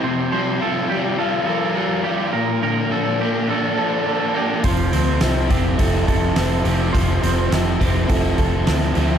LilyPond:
<<
  \new Staff \with { instrumentName = "Clean electric guitar" } { \time 4/4 \key f \major \tempo 4 = 104 c''8 c''8 a'8 g'8 a'8 a'8 a'8 g'8 | bes'8 bes'8 a'8 g'8 a'8 a'8 a'8 g'8 | c''8 c''8 a'8 g'8 a'8 a'8 a'8 g'8 | c''8 c''8 a'8 g'8 a'8 a'8 a'8 g'8 | }
  \new Staff \with { instrumentName = "Overdriven electric guitar" } { \time 4/4 \key f \major c8 g8 f'8 g8 f'8 f8 g8 f'8 | bes,8 bes8 d'8 bes8 d'8 f8 bes8 d'8 | f8 c'8 e'8 c'8 e'8 f8 c'8 e'8 | f8 c'8 e'8 c'8 e'8 f8 c'8 e'8 | }
  \new Staff \with { instrumentName = "Overdriven electric guitar" } { \time 4/4 \key f \major c8 f8 f8 g8 f'8 bes'8 f'8 g8 | bes,8 d8 f8 bes8 d'8 a'8 d'8 bes8 | f8 c'8 f8 c'8 e'8 a'8 e'8 c'8 | f8 c'8 f8 c'8 e'8 a'8 e'8 c'8 | }
  \new Staff \with { instrumentName = "Overdriven electric guitar" } { \clef bass \time 4/4 \key f \major r1 | r1 | <f, c f>4 <f, c f>8 <f, c f>8 <f, c f>4 <f, c f>8 <f, c f>8 | <f, c f>4 <f, c f>8 <f, c f>8 <f, c f>4 <f, c f>8 <f, c f>8 | }
  \new Staff \with { instrumentName = "Fingered electric bass" } { \clef bass \time 4/4 \key f \major r1 | r1 | f,,8 d,8 c,8 f,,8 f,,8 f,,8 f,,8 f,,8 | f,,8 f,,8 f,,8 f,,8 f,,8 f,,8 d,8 d,8 | }
  \new DrumStaff \with { instrumentName = "Drums" } \drummode { \time 4/4 r4 r4 r4 r4 | r4 r4 r4 r4 | <hho bd>8 hho8 <hho sn>8 <hho bd>8 <hho bd>8 <hho bd>8 <hho sn>8 hho8 | <hho bd>8 hho8 <hho sn>8 <hho bd>8 <hho bd>8 <hho bd>8 <hho sn>16 sn16 hho8 | }
>>